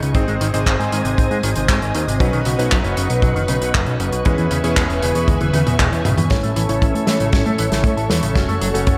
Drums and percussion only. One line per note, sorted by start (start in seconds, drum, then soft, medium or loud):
0.03 closed hi-hat medium
0.15 kick loud
0.15 closed hi-hat medium
0.28 closed hi-hat soft
0.41 closed hi-hat loud
0.54 closed hi-hat medium
0.66 kick loud
0.66 clap loud
0.66 closed hi-hat medium
0.80 closed hi-hat soft
0.92 closed hi-hat medium
1.05 closed hi-hat medium
1.18 kick loud
1.18 closed hi-hat medium
1.31 closed hi-hat soft
1.43 closed hi-hat loud
1.55 closed hi-hat medium
1.69 kick loud
1.69 clap loud
1.69 closed hi-hat medium
1.82 closed hi-hat soft
1.95 closed hi-hat loud
2.08 closed hi-hat medium
2.20 kick loud
2.20 closed hi-hat medium
2.33 closed hi-hat soft
2.45 closed hi-hat medium
2.59 closed hi-hat medium
2.72 kick medium
2.72 clap loud
2.72 closed hi-hat medium
2.84 closed hi-hat soft
2.97 closed hi-hat loud
3.10 closed hi-hat medium
3.22 kick loud
3.22 closed hi-hat medium
3.36 closed hi-hat soft
3.48 closed hi-hat loud
3.62 closed hi-hat medium
3.74 kick loud
3.74 clap loud
3.74 closed hi-hat medium
3.86 closed hi-hat soft
4.00 closed hi-hat loud
4.12 closed hi-hat medium
4.25 kick loud
4.25 closed hi-hat medium
4.38 closed hi-hat soft
4.51 closed hi-hat medium
4.64 closed hi-hat medium
4.77 kick loud
4.77 clap loud
4.77 closed hi-hat medium
4.90 closed hi-hat soft
5.02 closed hi-hat medium
5.15 closed hi-hat medium
5.28 kick loud
5.28 closed hi-hat medium
5.28 high tom medium
5.40 closed hi-hat soft
5.40 high tom medium
5.53 closed hi-hat medium
5.53 high tom medium
5.67 closed hi-hat medium
5.67 mid tom medium
5.79 kick loud
5.79 clap loud
5.79 closed hi-hat medium
5.79 mid tom medium
5.93 closed hi-hat soft
6.05 closed hi-hat medium
6.05 mid tom medium
6.18 closed hi-hat medium
6.18 mid tom medium
6.30 kick loud
6.30 snare medium
6.30 closed hi-hat medium
6.43 closed hi-hat soft
6.56 closed hi-hat medium
6.69 closed hi-hat medium
6.82 kick medium
6.82 closed hi-hat medium
6.95 closed hi-hat soft
7.07 snare medium
7.07 closed hi-hat loud
7.20 closed hi-hat medium
7.33 kick loud
7.33 snare medium
7.33 closed hi-hat medium
7.46 closed hi-hat soft
7.58 closed hi-hat medium
7.72 snare soft
7.72 closed hi-hat medium
7.84 kick loud
7.84 closed hi-hat medium
7.97 closed hi-hat soft
8.10 snare medium
8.10 closed hi-hat loud
8.23 closed hi-hat medium
8.35 kick loud
8.35 snare medium
8.35 closed hi-hat medium
8.49 closed hi-hat soft
8.61 closed hi-hat loud
8.75 closed hi-hat medium
8.87 kick loud
8.87 closed hi-hat medium